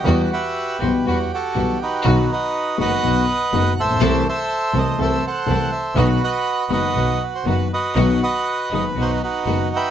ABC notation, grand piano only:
X:1
M:4/4
L:1/16
Q:1/4=121
K:Em
V:1 name="Grand piano" clef=bass
[E,,E,G,B,F]2 z4 [B,,,B,,E,G,B,F]2 [E,,E,G,B,F]2 z2 [B,,,B,,E,G,B,F]2 z2 | [B,,,B,,^D,F,B,F]2 z4 [F,,,F,,D,F,B,F]2 [B,,,B,,D,F,B,F]2 z2 [F,,,F,,D,F,B,F]2 z/2 A,,,/2 ^A,,,/2 B,,,/2 | [C,,C,E,A,CA]2 z4 [C,,C,E,A,CA]2 [C,,C,E,A,CA]2 z2 [C,,C,E,A,CA]2 z2 | [B,,,B,,^D,F,B,F]2 z4 [F,,,F,,D,F,B,F]2 [B,,,B,,D,F,B,F]2 z2 [F,,,F,,D,F,B,F]2 z2 |
[B,,,B,,^D,F,B,F]2 z4 [F,,,F,,D,F,B,F]2 [B,,,B,,D,F,B,F]2 z2 [F,,,F,,D,F,B,F]2 z2 |]